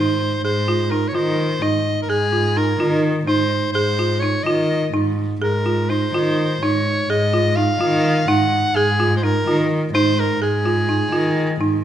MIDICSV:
0, 0, Header, 1, 4, 480
1, 0, Start_track
1, 0, Tempo, 471698
1, 453, Time_signature, 7, 3, 24, 8
1, 4053, Tempo, 476948
1, 11962, End_track
2, 0, Start_track
2, 0, Title_t, "Soprano saxophone"
2, 0, Program_c, 0, 64
2, 0, Note_on_c, 0, 72, 85
2, 446, Note_off_c, 0, 72, 0
2, 452, Note_on_c, 0, 72, 82
2, 922, Note_on_c, 0, 70, 75
2, 937, Note_off_c, 0, 72, 0
2, 1102, Note_on_c, 0, 73, 63
2, 1117, Note_off_c, 0, 70, 0
2, 1167, Note_on_c, 0, 72, 76
2, 1182, Note_off_c, 0, 73, 0
2, 1652, Note_on_c, 0, 75, 90
2, 1667, Note_off_c, 0, 72, 0
2, 2010, Note_off_c, 0, 75, 0
2, 2059, Note_on_c, 0, 70, 66
2, 2130, Note_on_c, 0, 68, 94
2, 2145, Note_off_c, 0, 70, 0
2, 2621, Note_on_c, 0, 70, 79
2, 2636, Note_off_c, 0, 68, 0
2, 3067, Note_off_c, 0, 70, 0
2, 3321, Note_on_c, 0, 72, 84
2, 3773, Note_off_c, 0, 72, 0
2, 3794, Note_on_c, 0, 72, 85
2, 4271, Note_on_c, 0, 73, 78
2, 4286, Note_off_c, 0, 72, 0
2, 4508, Note_on_c, 0, 75, 77
2, 4523, Note_off_c, 0, 73, 0
2, 5003, Note_off_c, 0, 75, 0
2, 5510, Note_on_c, 0, 70, 76
2, 5977, Note_on_c, 0, 72, 75
2, 5992, Note_off_c, 0, 70, 0
2, 6711, Note_on_c, 0, 73, 89
2, 6726, Note_off_c, 0, 72, 0
2, 7188, Note_on_c, 0, 75, 89
2, 7203, Note_off_c, 0, 73, 0
2, 7649, Note_on_c, 0, 77, 95
2, 7664, Note_off_c, 0, 75, 0
2, 8375, Note_on_c, 0, 78, 103
2, 8390, Note_off_c, 0, 77, 0
2, 8855, Note_on_c, 0, 68, 90
2, 8870, Note_off_c, 0, 78, 0
2, 9262, Note_off_c, 0, 68, 0
2, 9268, Note_on_c, 0, 72, 57
2, 9338, Note_on_c, 0, 70, 77
2, 9353, Note_off_c, 0, 72, 0
2, 9815, Note_off_c, 0, 70, 0
2, 10053, Note_on_c, 0, 72, 95
2, 10306, Note_on_c, 0, 70, 86
2, 10321, Note_off_c, 0, 72, 0
2, 10536, Note_off_c, 0, 70, 0
2, 10540, Note_on_c, 0, 68, 80
2, 11938, Note_off_c, 0, 68, 0
2, 11962, End_track
3, 0, Start_track
3, 0, Title_t, "Marimba"
3, 0, Program_c, 1, 12
3, 0, Note_on_c, 1, 63, 78
3, 324, Note_off_c, 1, 63, 0
3, 454, Note_on_c, 1, 68, 73
3, 629, Note_off_c, 1, 68, 0
3, 693, Note_on_c, 1, 65, 69
3, 868, Note_off_c, 1, 65, 0
3, 933, Note_on_c, 1, 63, 56
3, 1107, Note_off_c, 1, 63, 0
3, 1166, Note_on_c, 1, 65, 70
3, 1518, Note_off_c, 1, 65, 0
3, 1649, Note_on_c, 1, 63, 70
3, 2000, Note_off_c, 1, 63, 0
3, 2134, Note_on_c, 1, 68, 76
3, 2308, Note_off_c, 1, 68, 0
3, 2366, Note_on_c, 1, 65, 60
3, 2543, Note_off_c, 1, 65, 0
3, 2612, Note_on_c, 1, 63, 67
3, 2787, Note_off_c, 1, 63, 0
3, 2851, Note_on_c, 1, 65, 73
3, 3203, Note_off_c, 1, 65, 0
3, 3333, Note_on_c, 1, 63, 81
3, 3684, Note_off_c, 1, 63, 0
3, 3817, Note_on_c, 1, 68, 81
3, 3992, Note_off_c, 1, 68, 0
3, 4060, Note_on_c, 1, 65, 60
3, 4233, Note_off_c, 1, 65, 0
3, 4297, Note_on_c, 1, 63, 57
3, 4472, Note_off_c, 1, 63, 0
3, 4538, Note_on_c, 1, 65, 71
3, 4889, Note_off_c, 1, 65, 0
3, 5014, Note_on_c, 1, 63, 73
3, 5368, Note_off_c, 1, 63, 0
3, 5495, Note_on_c, 1, 68, 78
3, 5673, Note_off_c, 1, 68, 0
3, 5739, Note_on_c, 1, 65, 62
3, 5917, Note_off_c, 1, 65, 0
3, 5982, Note_on_c, 1, 63, 54
3, 6160, Note_off_c, 1, 63, 0
3, 6227, Note_on_c, 1, 65, 75
3, 6581, Note_off_c, 1, 65, 0
3, 6714, Note_on_c, 1, 63, 74
3, 7063, Note_off_c, 1, 63, 0
3, 7189, Note_on_c, 1, 68, 84
3, 7363, Note_off_c, 1, 68, 0
3, 7427, Note_on_c, 1, 65, 70
3, 7602, Note_off_c, 1, 65, 0
3, 7665, Note_on_c, 1, 63, 57
3, 7840, Note_off_c, 1, 63, 0
3, 7902, Note_on_c, 1, 65, 71
3, 8253, Note_off_c, 1, 65, 0
3, 8380, Note_on_c, 1, 63, 79
3, 8731, Note_off_c, 1, 63, 0
3, 8866, Note_on_c, 1, 68, 88
3, 9040, Note_off_c, 1, 68, 0
3, 9100, Note_on_c, 1, 65, 63
3, 9275, Note_off_c, 1, 65, 0
3, 9338, Note_on_c, 1, 63, 58
3, 9513, Note_off_c, 1, 63, 0
3, 9579, Note_on_c, 1, 65, 71
3, 9926, Note_off_c, 1, 65, 0
3, 10057, Note_on_c, 1, 63, 85
3, 10403, Note_off_c, 1, 63, 0
3, 10529, Note_on_c, 1, 68, 79
3, 10702, Note_off_c, 1, 68, 0
3, 10768, Note_on_c, 1, 65, 69
3, 10942, Note_off_c, 1, 65, 0
3, 11003, Note_on_c, 1, 63, 62
3, 11179, Note_off_c, 1, 63, 0
3, 11239, Note_on_c, 1, 65, 70
3, 11596, Note_off_c, 1, 65, 0
3, 11724, Note_on_c, 1, 63, 77
3, 11962, Note_off_c, 1, 63, 0
3, 11962, End_track
4, 0, Start_track
4, 0, Title_t, "Cello"
4, 0, Program_c, 2, 42
4, 0, Note_on_c, 2, 44, 67
4, 414, Note_off_c, 2, 44, 0
4, 456, Note_on_c, 2, 44, 82
4, 1132, Note_off_c, 2, 44, 0
4, 1179, Note_on_c, 2, 51, 79
4, 1613, Note_off_c, 2, 51, 0
4, 1660, Note_on_c, 2, 44, 75
4, 2094, Note_off_c, 2, 44, 0
4, 2136, Note_on_c, 2, 44, 80
4, 2813, Note_off_c, 2, 44, 0
4, 2859, Note_on_c, 2, 51, 84
4, 3295, Note_off_c, 2, 51, 0
4, 3334, Note_on_c, 2, 44, 74
4, 3773, Note_off_c, 2, 44, 0
4, 3816, Note_on_c, 2, 44, 79
4, 4495, Note_off_c, 2, 44, 0
4, 4537, Note_on_c, 2, 51, 73
4, 4977, Note_off_c, 2, 51, 0
4, 5015, Note_on_c, 2, 44, 77
4, 5458, Note_off_c, 2, 44, 0
4, 5499, Note_on_c, 2, 44, 77
4, 6185, Note_off_c, 2, 44, 0
4, 6231, Note_on_c, 2, 51, 79
4, 6672, Note_off_c, 2, 51, 0
4, 6713, Note_on_c, 2, 44, 73
4, 7150, Note_off_c, 2, 44, 0
4, 7194, Note_on_c, 2, 44, 88
4, 7867, Note_off_c, 2, 44, 0
4, 7911, Note_on_c, 2, 51, 93
4, 8346, Note_off_c, 2, 51, 0
4, 8393, Note_on_c, 2, 44, 74
4, 8827, Note_off_c, 2, 44, 0
4, 8864, Note_on_c, 2, 44, 93
4, 9539, Note_off_c, 2, 44, 0
4, 9585, Note_on_c, 2, 51, 86
4, 10017, Note_off_c, 2, 51, 0
4, 10051, Note_on_c, 2, 44, 83
4, 10487, Note_off_c, 2, 44, 0
4, 10528, Note_on_c, 2, 44, 81
4, 11205, Note_off_c, 2, 44, 0
4, 11241, Note_on_c, 2, 51, 79
4, 11687, Note_off_c, 2, 51, 0
4, 11732, Note_on_c, 2, 44, 68
4, 11962, Note_off_c, 2, 44, 0
4, 11962, End_track
0, 0, End_of_file